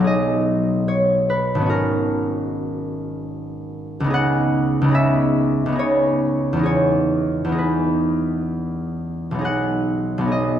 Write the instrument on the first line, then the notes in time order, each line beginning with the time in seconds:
harp
Already playing: B1 F#3 F#5
0.00 D#4
0.04 G#4 D#5
0.88 C#5
1.30 B4
1.55 G#1 B3
1.61 C#4
1.66 F#4 A#4
4.00 C#2 B3
4.07 D#4 G#4
4.14 F#5
4.81 C#2 B3
4.88 D#4 G#4
4.95 E5
5.66 C#2 B3
5.72 D#4 G#4
5.79 C#5
6.53 E2 B3
6.59 D#4
6.63 G#4 C#5
7.45 E2
7.49 B3 D#4
7.55 G#4 B4
9.31 B1 B3
9.39 D#4 G#4
9.45 F#5
10.18 B1 B3
10.25 D#4 G#4
10.32 D#5